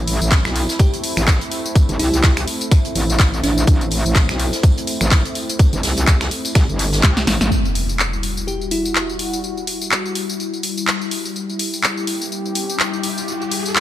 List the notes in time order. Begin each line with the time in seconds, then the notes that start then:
Already playing: A1 A3 C4 E4
0.08 open hi-hat, tambourine
0.21 A1, tambourine
0.31 kick, snare, clap, closed hi-hat, tambourine
0.45 B1, finger snap, snare, tambourine
0.56 open hi-hat, tambourine
0.69 snare, closed hi-hat, tambourine
0.79 G4, kick, closed hi-hat, tambourine
0.93 closed hi-hat, tambourine
1.04 open hi-hat, tambourine
1.17 A1, finger snap, tambourine
1.27 kick, snare, clap, closed hi-hat, tambourine
1.41 closed hi-hat, tambourine
1.51 open hi-hat, tambourine
1.66 tambourine
1.75 kick, closed hi-hat, tambourine
1.89 G1, closed hi-hat, tambourine
1.99 C2 E4, open hi-hat, tambourine
2.14 tambourine
2.23 kick, snare, clap, closed hi-hat, tambourine
2.37 finger snap, closed hi-hat, tambourine
2.47 open hi-hat, tambourine
2.61 closed hi-hat, tambourine
2.71 finger snap, kick, closed hi-hat, tambourine
2.85 closed hi-hat, tambourine
2.95 A1, open hi-hat, tambourine
3.10 tambourine
3.19 kick, snare, clap, closed hi-hat, tambourine
3.34 tambourine
3.43 A1 D4, snare, open hi-hat, tambourine
3.58 tambourine
3.67 A1, kick, closed hi-hat, tambourine
3.81 closed hi-hat, tambourine
3.91 open hi-hat, tambourine
4.05 A1, tambourine
4.15 kick, snare, clap, closed hi-hat, tambourine
4.29 B1, finger snap, snare, tambourine
4.39 open hi-hat, tambourine
4.53 snare, closed hi-hat, tambourine
4.63 kick, closed hi-hat, tambourine
4.78 closed hi-hat, tambourine
4.87 open hi-hat, tambourine
5.01 A1, finger snap, tambourine
5.11 kick, snare, clap, closed hi-hat, tambourine
5.25 closed hi-hat, tambourine
5.35 open hi-hat, tambourine
5.49 closed hi-hat, tambourine
5.59 kick, closed hi-hat, tambourine
5.73 G1, closed hi-hat, tambourine
5.83 C2, snare, open hi-hat, tambourine
5.97 closed hi-hat, tambourine
6.07 kick, clap, closed hi-hat, tambourine
6.21 finger snap, snare, closed hi-hat, tambourine
6.31 closed hi-hat, open hi-hat
6.45 closed hi-hat, tambourine
6.55 C2, finger snap, kick, snare, closed hi-hat, tambourine
6.69 G1, tambourine
6.79 snare, open hi-hat, tambourine
6.93 snare, closed hi-hat, tambourine
7.03 C2, kick, snare, clap, closed hi-hat, tambourine
7.17 snare, closed hi-hat, tambourine
7.27 A1, snare, open hi-hat, tambourine
7.41 A1, snare, closed hi-hat, tambourine
7.51 G3 E4 F#4, tambourine, impact
7.65 tambourine
7.75 open hi-hat
7.89 tambourine
8.00 clap, tambourine
8.13 tambourine
8.23 open hi-hat
8.37 tambourine
8.47 G4, tambourine
8.61 tambourine
8.71 E4, open hi-hat
8.85 tambourine
8.96 clap, tambourine
9.09 tambourine
9.19 open hi-hat
9.33 tambourine
9.44 tambourine
9.57 tambourine
9.67 open hi-hat
9.81 tambourine
9.92 clap, tambourine
10.06 tambourine
10.15 open hi-hat
10.29 tambourine
10.40 tambourine
10.53 tambourine
10.63 open hi-hat
10.78 tambourine
10.88 clap, tambourine
11.01 tambourine
11.11 open hi-hat
11.25 tambourine
11.35 G4, tambourine, riser
11.49 tambourine
11.59 open hi-hat
11.74 tambourine
11.84 clap, tambourine
11.97 tambourine
12.07 open hi-hat
12.21 tambourine
12.32 tambourine
12.46 tambourine
12.55 open hi-hat
12.69 tambourine
12.80 clap, tambourine
12.94 tambourine
13.03 open hi-hat
13.18 tambourine
13.28 tambourine
13.42 tambourine
13.52 open hi-hat
13.66 tambourine
13.76 clap, tambourine